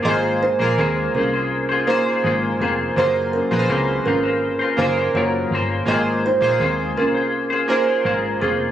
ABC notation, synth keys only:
X:1
M:4/4
L:1/16
Q:1/4=82
K:Abmix
V:1 name="Synth keys"
[B,FAc]2 z [B,FAB]4- [B,FAB] z2 [B,FAc]4- [B,FAc] z | [B,FAc]2 z [B,FA_c=c]4- [B,FA_c=c] z2 [B,FAB]4- [B,FAB] z | [B,FAc]2 z [B,FAc]4- [B,FAc] z2 [B,FAB]4- [B,FAB] z |]